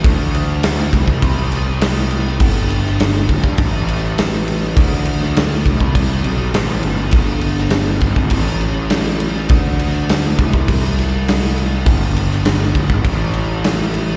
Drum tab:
CC |x-x-x-x-x-x-x-x-|x-x-x-x-x-x-x-x-|x-x-x-x-x-x-x-x-|x-x-x-x-x-x-x-x-|
SD |----o-----o-o---|---oo-------o---|---oo-------o---|---oo-------o---|
BD |o-----ooo-------|o-----ooo-------|o-----ooo-------|o-----ooo-------|

CC |x-x-x-x-x-x-x-x-|x-x-x-x-x-x-x-x-|
SD |----o-----o-o---|---oo-------o---|
BD |o-----ooo-------|o-----ooo-------|